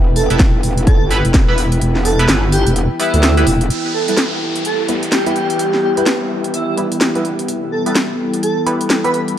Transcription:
Already playing: E1 E4 B4 G5
0.16 A4, open hi-hat
0.30 E1 G3 B3 E4 A4 B4, closed hi-hat
0.39 kick, snare, closed hi-hat
0.54 E1
0.63 open hi-hat
0.78 closed hi-hat
0.87 A4, kick, closed hi-hat
1.01 G1
1.11 G3 B3 E4 B4, open hi-hat
1.25 E1, closed hi-hat
1.34 kick, snare, closed hi-hat
1.48 E1 G3 B3 E4 B4
1.58 open hi-hat
1.72 closed hi-hat
1.81 E1, closed hi-hat
1.95 snare
2.05 A4, open hi-hat
2.19 G3 B3 E4 B4, closed hi-hat
2.29 G1, snare, closed hi-hat
2.52 G4, open hi-hat
2.67 E1, closed hi-hat
2.76 closed hi-hat
3.00 G3 B3 E4 B4, open hi-hat
3.14 D2, closed hi-hat
3.23 snare, closed hi-hat
3.37 G3 B3 E4 B4, closed hi-hat
3.47 E1, open hi-hat
3.61 closed hi-hat
3.70 E3 G3 B3 E4 G4, closed hi-hat, downlifter
3.94 A4
4.06 G3 B3 E4 A4 B4, closed hi-hat
4.17 snare, closed hi-hat
4.55 closed hi-hat
4.65 A4, closed hi-hat
4.88 G3 B3 E4 B4, closed hi-hat
5.03 closed hi-hat
5.12 G4, snare, closed hi-hat
5.26 G3 B3 E4 B4, closed hi-hat
5.36 closed hi-hat
5.50 closed hi-hat
5.59 closed hi-hat
5.73 snare
5.83 G4
5.97 G3 B3 E4 G4 B4, closed hi-hat
6.06 snare, closed hi-hat
6.44 closed hi-hat
6.54 E4, closed hi-hat
6.68 E4
6.78 G3 B3 E4 B4, closed hi-hat
6.92 closed hi-hat
7.01 snare, closed hi-hat
7.15 G3 B3 E4 B4, closed hi-hat
7.25 closed hi-hat
7.39 closed hi-hat
7.48 A4, closed hi-hat
7.72 A4
7.86 G3 B3 E4 A4 B4, closed hi-hat
7.95 snare, closed hi-hat
8.34 closed hi-hat
8.43 A4, closed hi-hat
8.67 G3 B3 E4 B4, closed hi-hat
8.81 closed hi-hat
8.90 snare, closed hi-hat
9.04 G3 B3 E4 B4, closed hi-hat
9.14 closed hi-hat
9.28 closed hi-hat

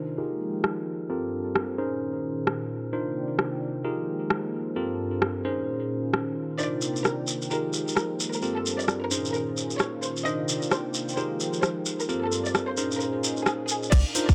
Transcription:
Already playing: C3 D#3 A#3 D4 D#4 F4 G4 A#4 C5 D5
0.18 F3 G#3 D#4 F4 G4 G#4 A#4 C5 G5
0.64 cross-stick
1.10 G2 C4 D4 F4 G4 A4 A#4 A5
1.55 cross-stick
1.78 A#2 D#3 C#4 D#4 G#4 A#4 C5
2.47 cross-stick
2.93 C3 A#3 D4 D#4 F4 A#4 C5 D5 G5
3.39 cross-stick
3.85 F3 G#3 D#4 F4 G4 G#4 A#4 C5
4.30 cross-stick
4.76 G2 C4 D4 F4 G4 A4 A#4 A5
5.22 cross-stick
5.45 A#2 D#3 C#4 D#4 G#4 A#4 C5
6.13 cross-stick
6.59 C3 A#3 D4 D#4 F4 A#4 C5 D5 G5, shekere
6.82 shekere
6.96 shekere
7.04 A#4, cross-stick, shekere
7.27 shekere
7.42 shekere
7.51 F3 G#3 A#3 D#4 F4 G4 G#4 A#4 C5, shekere
7.73 shekere
7.88 shekere
7.97 A#4, cross-stick, shekere
8.20 shekere
8.33 A#4, shekere
8.42 G2 C4 D4 F4 G4 A4 A#4 A5, shekere
8.56 A4
8.66 shekere
8.79 D5, shekere
8.88 cross-stick, shekere
9.02 A#4
9.11 A#2 D#3 C#4 D#4 G#4 A#4 C5, shekere
9.25 shekere
9.34 A#4, shekere
9.57 shekere
9.70 shekere
9.79 C#5, cross-stick, shekere
10.03 C5, shekere
10.17 shekere
10.26 C3 A#3 D4 D#4 F4 A#4 C5 D5 D#5 G5, shekere
10.49 shekere
10.62 shekere
10.71 C5, cross-stick, shekere
10.94 shekere
11.09 shekere
11.17 F3 G#3 D#4 F4 G4 G#4 A#4 C5, shekere
11.40 shekere
11.53 shekere
11.63 C5, cross-stick, shekere
11.86 shekere
12.00 A#4, shekere
12.09 G2 A#3 C4 D4 F4 G4 A4 A#4 A5, shekere
12.23 A4
12.32 shekere
12.45 D5, shekere
12.54 cross-stick, shekere
12.69 C5
12.77 A#2 C#4 D#4 G#4 A#4 C5, shekere
12.91 shekere
13.00 A#4, shekere
13.24 shekere
13.37 shekere
13.46 G#4, cross-stick, shekere
13.68 G#4, shekere
13.83 shekere
13.92 C2 D4 D#4 F4 A#4 D5, kick, closed hi-hat, crash, shekere
14.15 D4 D#4 F4 A#4 C5, open hi-hat, shekere
14.29 kick, shekere

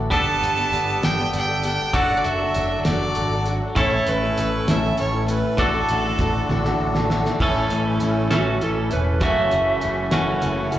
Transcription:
Already playing: A1 D3 D4 F#4 A4
0.11 G1 G3 A3 B3 D4 G4 A4 A5, kick, closed hi-hat
0.26 B3 D4
0.42 G1, closed hi-hat
0.56 B3 D4 A4
0.71 G1 G3 B3 D4 A4, closed hi-hat
1.02 G1 G3 B3 D4 A4 G5, snare, closed hi-hat
1.18 B3 D4 A4
1.33 G1 G5, closed hi-hat
1.48 B3 D4 A4
1.63 G3 B3 D4 A4 G5, closed hi-hat
1.93 F#1 F#3 A3 D4 F#4 A4 F#5, kick, closed hi-hat
2.10 D4 F#4 A4
2.17 D5
2.24 F#1 E5, closed hi-hat
2.40 D4 F#4 A4
2.54 F#1 F#3 D4 F#4 A4, closed hi-hat
2.85 F#1 F#3 D4 F#4 A4 D5, snare, closed hi-hat
3.01 D4 F#4 A4
3.15 G#1, closed hi-hat
3.32 D4 F#4 A4
3.46 F#3 D4 F#4 A4, closed hi-hat
3.75 A1 A2 A3 C#4 E4 A4 C#5, kick, closed hi-hat
3.93 C#4 E4 A4
4.07 A1 B4, closed hi-hat
4.23 C#4 E4 A4
4.38 A1 A3 C#4 E4 A4, closed hi-hat
4.67 A1 A2 A3 C#4 E4 A4 E5, snare, closed hi-hat
4.83 C#4 E4 A4
4.97 A1 C#5, closed hi-hat
5.12 C#4 E4 A4
5.28 A3 C#4 E4 A4 B4, closed hi-hat
5.57 A1 A2 D3 A3 D4 F#4 A4, kick, closed hi-hat
5.74 D4 F#4 A4
5.89 A1, closed hi-hat
6.04 D4 F#4 A4
6.17 A1 D3 D4 F#4 A4, kick, closed hi-hat
6.49 A1 A2 D3 D4 F#4 A4, high tom
6.65 D4 F#4 A4, snare
6.80 A1
6.95 D4 F#4 A4, snare
7.10 D3 D4 F#4 A4, snare
7.25 snare
7.40 A1 A2 E3 A3 C#4 E4 A4, kick, crash
7.69 A1 A3 C#4 E4, closed hi-hat
8.00 A1 E3 A3 C#4 E4, closed hi-hat
8.31 A1 A2 E3 A3 C#4 E4 F#4 A4, snare, closed hi-hat
8.61 A1 E3 A3 C#4 E4 A4, closed hi-hat
8.91 E1 A3 C#4 E4 B4, closed hi-hat
9.20 F#1 F#2 C#3 E3 A3 C#4 E4 F#4, kick, closed hi-hat
9.24 A3 E5
9.51 F#1 E3 A3 C#4 F#4, closed hi-hat
9.81 F#1 E3 A3 C#4 F#4, closed hi-hat
10.11 F#1 F#2 C#3 E3 A3 C#4 F#4, snare, closed hi-hat
10.41 F#1 E3 A3 C#4 F#4, closed hi-hat
10.71 F#1 E3 A3 C#4 F#4, closed hi-hat

